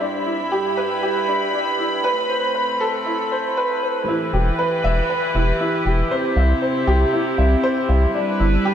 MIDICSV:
0, 0, Header, 1, 4, 480
1, 0, Start_track
1, 0, Key_signature, 1, "minor"
1, 0, Tempo, 508475
1, 9, Time_signature, 4, 2, 24, 8
1, 8252, End_track
2, 0, Start_track
2, 0, Title_t, "Upright piano"
2, 0, Program_c, 0, 0
2, 0, Control_c, 0, 64, 127
2, 6, Note_on_c, 0, 62, 78
2, 23, Control_c, 0, 64, 0
2, 205, Control_c, 0, 64, 127
2, 236, Note_off_c, 0, 62, 0
2, 248, Note_on_c, 0, 64, 73
2, 477, Note_off_c, 0, 64, 0
2, 488, Note_on_c, 0, 67, 96
2, 717, Note_off_c, 0, 67, 0
2, 730, Note_on_c, 0, 71, 96
2, 867, Note_off_c, 0, 71, 0
2, 970, Note_on_c, 0, 67, 85
2, 1198, Note_off_c, 0, 67, 0
2, 1210, Note_on_c, 0, 62, 75
2, 1435, Note_off_c, 0, 62, 0
2, 1449, Note_on_c, 0, 62, 68
2, 1586, Note_off_c, 0, 62, 0
2, 1689, Note_on_c, 0, 64, 74
2, 1918, Note_off_c, 0, 64, 0
2, 1927, Note_on_c, 0, 71, 103
2, 1940, Control_c, 0, 64, 0
2, 2065, Note_off_c, 0, 71, 0
2, 2085, Control_c, 0, 64, 127
2, 2167, Note_on_c, 0, 72, 76
2, 2396, Note_off_c, 0, 72, 0
2, 2406, Note_on_c, 0, 71, 68
2, 2636, Note_off_c, 0, 71, 0
2, 2647, Note_on_c, 0, 69, 106
2, 2785, Note_off_c, 0, 69, 0
2, 2889, Note_on_c, 0, 64, 76
2, 3118, Note_off_c, 0, 64, 0
2, 3132, Note_on_c, 0, 72, 82
2, 3359, Note_off_c, 0, 72, 0
2, 3372, Note_on_c, 0, 71, 97
2, 3599, Note_off_c, 0, 71, 0
2, 3614, Note_on_c, 0, 72, 72
2, 3840, Note_off_c, 0, 72, 0
2, 3852, Note_on_c, 0, 64, 81
2, 3862, Control_c, 0, 64, 0
2, 4017, Control_c, 0, 64, 127
2, 4079, Note_off_c, 0, 64, 0
2, 4091, Note_on_c, 0, 67, 73
2, 4318, Note_off_c, 0, 67, 0
2, 4330, Note_on_c, 0, 71, 92
2, 4558, Note_off_c, 0, 71, 0
2, 4571, Note_on_c, 0, 76, 100
2, 4707, Note_off_c, 0, 76, 0
2, 4812, Note_on_c, 0, 71, 76
2, 5039, Note_off_c, 0, 71, 0
2, 5051, Note_on_c, 0, 64, 82
2, 5278, Note_off_c, 0, 64, 0
2, 5292, Note_on_c, 0, 64, 73
2, 5428, Note_off_c, 0, 64, 0
2, 5531, Note_on_c, 0, 67, 75
2, 5758, Note_off_c, 0, 67, 0
2, 5770, Note_on_c, 0, 72, 97
2, 5782, Control_c, 0, 64, 0
2, 5907, Note_off_c, 0, 72, 0
2, 5939, Control_c, 0, 64, 127
2, 6011, Note_on_c, 0, 76, 71
2, 6238, Note_off_c, 0, 76, 0
2, 6250, Note_on_c, 0, 72, 76
2, 6478, Note_off_c, 0, 72, 0
2, 6489, Note_on_c, 0, 67, 97
2, 6626, Note_off_c, 0, 67, 0
2, 6730, Note_on_c, 0, 64, 82
2, 6958, Note_off_c, 0, 64, 0
2, 6968, Note_on_c, 0, 76, 80
2, 7197, Note_off_c, 0, 76, 0
2, 7208, Note_on_c, 0, 72, 103
2, 7437, Note_off_c, 0, 72, 0
2, 7448, Note_on_c, 0, 76, 71
2, 7677, Note_off_c, 0, 76, 0
2, 7689, Note_on_c, 0, 62, 77
2, 7703, Control_c, 0, 64, 0
2, 7843, Control_c, 0, 64, 127
2, 7918, Note_off_c, 0, 62, 0
2, 7928, Note_on_c, 0, 64, 75
2, 8157, Note_off_c, 0, 64, 0
2, 8168, Note_on_c, 0, 67, 102
2, 8252, Note_off_c, 0, 67, 0
2, 8252, End_track
3, 0, Start_track
3, 0, Title_t, "String section"
3, 0, Program_c, 1, 48
3, 0, Note_on_c, 1, 55, 78
3, 7, Note_on_c, 1, 43, 90
3, 7, Note_on_c, 1, 64, 78
3, 7, Note_on_c, 1, 83, 99
3, 1890, Note_off_c, 1, 55, 0
3, 1909, Note_off_c, 1, 43, 0
3, 1909, Note_off_c, 1, 64, 0
3, 1922, Note_on_c, 1, 57, 82
3, 1922, Note_on_c, 1, 60, 79
3, 1923, Note_on_c, 1, 45, 84
3, 3811, Note_off_c, 1, 83, 0
3, 3827, Note_off_c, 1, 45, 0
3, 3827, Note_off_c, 1, 57, 0
3, 3827, Note_off_c, 1, 60, 0
3, 3850, Note_on_c, 1, 64, 79
3, 3851, Note_on_c, 1, 52, 86
3, 3851, Note_on_c, 1, 67, 76
3, 3851, Note_on_c, 1, 71, 97
3, 5751, Note_off_c, 1, 52, 0
3, 5751, Note_off_c, 1, 71, 0
3, 5768, Note_on_c, 1, 60, 79
3, 5771, Note_on_c, 1, 48, 89
3, 7653, Note_off_c, 1, 67, 0
3, 7670, Note_off_c, 1, 60, 0
3, 7671, Note_off_c, 1, 48, 0
3, 7690, Note_on_c, 1, 55, 88
3, 7690, Note_on_c, 1, 62, 77
3, 7691, Note_on_c, 1, 71, 102
3, 8252, Note_off_c, 1, 55, 0
3, 8252, Note_off_c, 1, 62, 0
3, 8252, Note_off_c, 1, 64, 0
3, 8252, Note_off_c, 1, 71, 0
3, 8252, End_track
4, 0, Start_track
4, 0, Title_t, "Analog synth bass"
4, 0, Program_c, 2, 38
4, 4091, Note_on_c, 2, 28, 102
4, 4252, Note_off_c, 2, 28, 0
4, 4570, Note_on_c, 2, 28, 87
4, 4732, Note_off_c, 2, 28, 0
4, 5049, Note_on_c, 2, 28, 94
4, 5211, Note_off_c, 2, 28, 0
4, 5528, Note_on_c, 2, 28, 90
4, 5691, Note_off_c, 2, 28, 0
4, 6007, Note_on_c, 2, 36, 106
4, 6170, Note_off_c, 2, 36, 0
4, 6490, Note_on_c, 2, 36, 89
4, 6652, Note_off_c, 2, 36, 0
4, 6970, Note_on_c, 2, 36, 89
4, 7132, Note_off_c, 2, 36, 0
4, 7449, Note_on_c, 2, 36, 87
4, 7611, Note_off_c, 2, 36, 0
4, 7932, Note_on_c, 2, 31, 107
4, 8092, Note_off_c, 2, 31, 0
4, 8252, End_track
0, 0, End_of_file